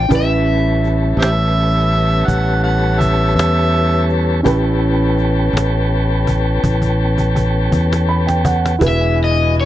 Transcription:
0.00 0.11 G5 medium
0.08 1.15 A1 medium
0.08 4.41 G3 medium
0.08 4.41 B3 medium
0.08 4.40 C#4 soft
0.08 4.41 C#4 medium
0.08 4.41 E4 soft
0.08 4.42 G4 soft
0.08 4.41 A4 medium
0.08 4.42 B4 medium
0.08 cajon bass medium
0.16 1.54 E5 medium
0.84 cajon slap soft
0.86 cajon slap soft
1.17 2.23 A1 medium
1.17 1.28 G4 medium
1.17 1.26 C5 medium
1.17 2.28 E5 medium
1.22 cajon slap loud
1.92 cajon slap soft
2.27 3.33 A1 medium
2.27 2.62 F#5 medium
2.27 cajon bass medium
2.27 cajon slap soft
2.64 3.02 F#5 medium
3.00 3.35 E5 medium
3.00 cajon bass medium
3.35 4.41 E2 medium
3.35 4.06 E5 medium
3.39 cajon slap medium
4.10 cajon slap soft
4.43 5.50 A1 medium
4.43 8.76 B3 medium
4.43 8.75 C#4 medium
4.43 8.76 C#4 medium
4.43 8.76 E4 medium
4.43 8.76 G4 medium
4.43 8.76 A4 medium
4.43 8.77 B4 medium
4.43 cajon bass medium
5.18 cajon slap soft
5.53 6.58 A1 medium
5.53 cajon slap medium
6.27 cajon bass medium
6.64 7.68 A1 medium
6.64 cajon bass medium
6.82 cajon bass medium
7.18 cajon bass soft
7.36 cajon bass medium
7.72 8.76 E2 medium
7.72 cajon bass medium
7.72 cajon slap soft
7.93 cajon slap medium
8.09 8.25 B5 medium
8.27 8.43 G5 medium
8.27 cajon slap medium
8.45 8.78 F#5 medium
8.45 cajon bass medium
8.66 cajon slap medium
8.78 9.65 E1 medium
8.78 9.65 D3 medium
8.78 9.65 F#3 medium
8.78 9.65 E4 soft
8.78 9.65 E4 medium
8.78 9.65 F#4 soft
8.78 9.65 G#4 medium
8.78 9.65 G#4 soft
8.78 9.65 B4 medium
8.78 cajon bass medium
8.88 9.18 E5 medium
9.24 9.54 D#5 medium
9.54 cajon slap soft
9.61 9.65 D5 medium

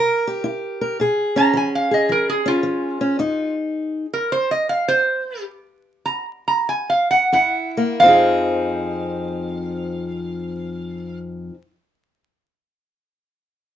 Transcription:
0.00 0.40 C3 medium
0.00 0.25 A#4 medium
0.00 0.80 A#4 medium
0.27 0.97 G4 medium
0.44 0.95 E4 medium
0.81 0.97 A#4 medium
1.00 1.50 A#2 medium
1.00 1.91 G#4 medium
1.36 2.44 C#4 medium
1.36 1.54 A#5 loud
1.53 2.05 F3 medium
1.53 1.73 G#5 medium
1.75 1.91 F5 medium
1.91 4.16 G#4 medium
1.91 2.10 D#5 medium
2.09 2.60 F3 medium
2.09 2.28 A#4 medium
2.29 2.46 G#4 medium
2.46 3.00 C#4 medium
2.46 3.53 F4 medium
2.63 3.15 F3 medium
3.01 3.17 C#4 medium
3.19 3.66 F2 medium
3.19 4.05 D#4 medium
4.13 4.30 A#4 medium
4.32 4.49 C5 medium
4.51 4.68 D#5 medium
4.69 4.87 F5 medium
4.88 5.44 C5 loud
6.06 6.25 A#5 medium
6.48 6.67 A#5 medium
6.69 6.89 G#5 medium
6.90 7.10 F5 medium
7.11 7.31 F#5 medium
7.32 7.95 F#2 medium
7.32 7.97 E4 medium
7.32 7.98 F#5 medium
7.77 8.00 A#3 medium
8.00 11.50 F2 medium
8.00 11.52 F3 medium
8.00 11.54 C4 medium
8.00 11.18 F5 loud
8.06 11.56 D#4 medium
8.06 11.58 G#4 medium

